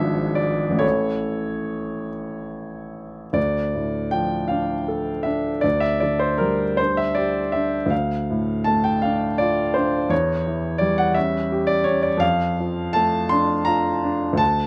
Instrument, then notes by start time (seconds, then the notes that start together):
grand piano
Already playing: G#1 G#2 F3 D4 B4 E5
0.35 D5
0.70 A1
0.77 E3 E4 A4 C#5
3.33 D2 D5
3.75 A2
4.11 F3 G5
4.48 D4 F5
4.88 A4
5.23 D4 E5
5.61 D2 D5
5.80 E5
6.00 D3 D5
6.19 C5
6.38 G3 A#4
6.77 D4 C5
6.97 E5
7.15 G4 D5
7.52 D4 E5
7.86 D2
7.90 F5
8.31 A2
8.64 A3 A5
8.84 G5
9.02 D4 F5
9.38 F4 D5
9.74 D4 C5
10.09 E2 C#5
10.47 E3
10.78 G3 D5
10.98 F#5
11.14 C#4 E5
11.52 G4
11.67 D5
11.84 C#4 C#5
12.03 D5
12.17 F2 F5
12.60 F3
12.93 A3 A5
13.29 D4 C6
13.65 F4 A#5
14.04 D4
14.33 D2
14.37 A5